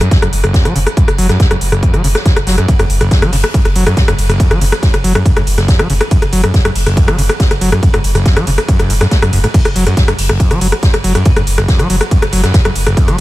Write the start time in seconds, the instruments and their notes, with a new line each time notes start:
0.01 acid bass F#2, cross-stick, closed hi-hat
0.11 kick, snare, closed hi-hat, ride
0.22 sub bass F#1, acid bass F#2, cross-stick, closed hi-hat
0.33 sub bass F#1, open hi-hat, ride
0.44 acid bass F#1, cross-stick, closed hi-hat, ride
0.54 acid bass F#2, kick, snare, closed hi-hat, ride
0.65 sub bass F#1, acid bass F#3, cross-stick, closed hi-hat
0.76 sub bass F#1, acid bass C#3, open hi-hat, ride
0.87 cross-stick, closed hi-hat, ride
0.96 acid bass F#2, kick, closed hi-hat, ride
1.08 sub bass F#1, cross-stick, closed hi-hat
1.18 sub bass F#1, acid bass F#3, open hi-hat, ride
1.29 acid bass F#2, cross-stick, snare, closed hi-hat
1.40 acid bass F#2, kick, snare, closed hi-hat, ride
1.51 sub bass F#1, acid bass F#2, cross-stick, closed hi-hat
1.61 sub bass F#1, open hi-hat, ride
1.72 acid bass F#1, cross-stick, closed hi-hat
1.82 acid bass F#2, kick, closed hi-hat, ride
1.94 sub bass F#1, acid bass F#3, cross-stick, closed hi-hat
2.04 sub bass F#1, acid bass C#3, open hi-hat, ride
2.15 cross-stick, snare, closed hi-hat
2.25 acid bass F#2, kick, snare, closed hi-hat, ride
2.36 sub bass F#1, cross-stick, closed hi-hat
2.47 sub bass F#1, acid bass F#3, snare, open hi-hat, ride
2.58 acid bass F#2, cross-stick, closed hi-hat
2.68 acid bass F#2, kick, closed hi-hat, ride
2.79 sub bass F#1, acid bass F#2, cross-stick, closed hi-hat, ride
2.90 sub bass F#1, open hi-hat, ride
3.01 acid bass F#1, cross-stick, closed hi-hat, ride
3.11 acid bass F#2, kick, snare, closed hi-hat, ride
3.22 sub bass F#1, acid bass F#3, cross-stick, closed hi-hat, ride
3.32 sub bass F#1, acid bass C#3, open hi-hat, ride
3.44 cross-stick, closed hi-hat, ride
3.53 acid bass F#2, kick, closed hi-hat, ride
3.65 sub bass F#1, cross-stick, closed hi-hat, ride
3.75 sub bass F#1, acid bass F#3, open hi-hat, ride
3.86 acid bass F#2, cross-stick, closed hi-hat, ride
3.97 kick, snare, closed hi-hat, ride
4.08 sub bass F#1, acid bass F#2, cross-stick, closed hi-hat, ride
4.18 sub bass F#1, open hi-hat, ride
4.29 acid bass F#1, cross-stick, closed hi-hat, ride
4.40 acid bass F#2, kick, closed hi-hat, ride
4.51 sub bass F#1, acid bass F#3, cross-stick, closed hi-hat, ride
4.61 sub bass F#1, acid bass C#3, open hi-hat, ride
4.72 cross-stick, snare, closed hi-hat, ride
4.82 acid bass F#2, kick, snare, closed hi-hat, ride
4.93 sub bass F#1, cross-stick, closed hi-hat, ride
5.04 sub bass F#1, acid bass F#3, open hi-hat, ride
5.15 acid bass F#2, cross-stick, closed hi-hat, ride
5.25 acid bass F#2, kick, closed hi-hat, ride
5.36 sub bass F#1, acid bass F#2, cross-stick, closed hi-hat, ride
5.47 sub bass F#1, open hi-hat, ride
5.58 acid bass F#1, cross-stick, snare, closed hi-hat, ride
5.68 acid bass F#2, kick, snare, closed hi-hat, ride
5.79 sub bass F#1, acid bass F#3, cross-stick, closed hi-hat, ride
5.90 sub bass F#1, acid bass C#3, open hi-hat, ride
6.01 cross-stick, closed hi-hat, ride
6.11 acid bass F#2, kick, closed hi-hat, ride
6.22 sub bass F#1, cross-stick, closed hi-hat, ride
6.32 sub bass F#1, acid bass F#3, open hi-hat, ride
6.44 acid bass F#2, cross-stick, closed hi-hat, ride
6.54 acid bass F#2, kick, snare, closed hi-hat, ride
6.65 sub bass F#1, acid bass F#2, cross-stick, closed hi-hat, ride
6.75 sub bass F#1, open hi-hat, ride
6.86 acid bass F#1, cross-stick, closed hi-hat, ride
6.97 acid bass F#2, kick, closed hi-hat, ride
7.08 sub bass F#1, acid bass F#3, cross-stick, closed hi-hat, ride
7.18 sub bass F#1, acid bass C#3, open hi-hat, ride
7.29 cross-stick, closed hi-hat, ride
7.40 acid bass F#2, kick, snare, closed hi-hat, ride
7.51 sub bass F#1, cross-stick, closed hi-hat, ride
7.61 sub bass F#1, acid bass F#3, open hi-hat, ride
7.72 acid bass F#2, cross-stick, closed hi-hat, ride
7.83 acid bass F#2, kick, closed hi-hat, ride
7.94 sub bass F#1, acid bass F#2, cross-stick, closed hi-hat, ride
8.04 sub bass F#1, open hi-hat, ride
8.15 acid bass F#1, cross-stick, snare, closed hi-hat, ride
8.25 acid bass F#2, kick, snare, closed hi-hat, ride
8.36 sub bass F#1, acid bass F#3, cross-stick, closed hi-hat, ride
8.47 sub bass F#1, acid bass C#3, open hi-hat, ride
8.58 cross-stick, closed hi-hat, ride
8.68 acid bass F#2, kick, closed hi-hat, ride
8.79 sub bass F#1, cross-stick, closed hi-hat, ride
8.90 sub bass F#1, acid bass A2, open hi-hat, ride
9.01 acid bass F#2, cross-stick, snare, closed hi-hat, ride
9.11 acid bass A3, kick, snare, closed hi-hat, ride
9.22 sub bass F#1, acid bass F#2, cross-stick, closed hi-hat, ride
9.32 sub bass F#1, acid bass F#2, open hi-hat, ride
9.44 acid bass G#2, cross-stick, closed hi-hat, ride
9.54 acid bass F#2, kick, closed hi-hat, crash, ride
9.65 sub bass F#1, cross-stick, closed hi-hat, ride
9.76 sub bass F#1, acid bass F#3, open hi-hat, ride
9.86 acid bass F#2, cross-stick, closed hi-hat, ride
9.97 acid bass F#2, kick, snare, closed hi-hat, ride
10.08 sub bass F#1, acid bass F#2, cross-stick, closed hi-hat, ride
10.19 sub bass F#1, open hi-hat, ride
10.29 acid bass F#1, cross-stick, closed hi-hat, ride
10.40 acid bass F#2, kick, closed hi-hat, ride
10.51 sub bass F#1, acid bass F#3, cross-stick, closed hi-hat, ride
10.61 sub bass F#1, acid bass F#3, open hi-hat, ride
10.72 cross-stick, closed hi-hat, ride
10.83 acid bass F#2, kick, snare, closed hi-hat, ride
10.94 sub bass F#1, cross-stick, closed hi-hat, ride
11.04 sub bass F#1, acid bass F#3, open hi-hat, ride
11.15 acid bass F#2, cross-stick, closed hi-hat, ride
11.26 acid bass F#2, kick, closed hi-hat, ride
11.36 sub bass F#1, acid bass F#2, cross-stick, closed hi-hat, ride
11.47 sub bass F#1, open hi-hat, ride
11.58 acid bass F#1, cross-stick, snare, closed hi-hat, ride
11.68 acid bass F#2, kick, snare, closed hi-hat, ride
11.79 sub bass F#1, acid bass F#3, cross-stick, closed hi-hat, ride
11.90 sub bass F#1, acid bass F#3, open hi-hat, ride
12.01 cross-stick, closed hi-hat, ride
12.11 acid bass F#2, kick, closed hi-hat, ride
12.22 sub bass F#1, cross-stick, closed hi-hat, ride
12.33 sub bass F#1, acid bass F#3, open hi-hat, ride
12.44 acid bass F#2, cross-stick, snare, closed hi-hat, ride
12.54 acid bass F#2, kick, snare, closed hi-hat, ride
12.65 sub bass F#1, acid bass F#2, cross-stick, closed hi-hat, ride
12.75 sub bass F#1, open hi-hat, ride
12.87 acid bass F#1, cross-stick, closed hi-hat, ride
12.97 acid bass F#2, kick, closed hi-hat, ride
13.08 sub bass F#1, acid bass F#3, cross-stick, closed hi-hat, ride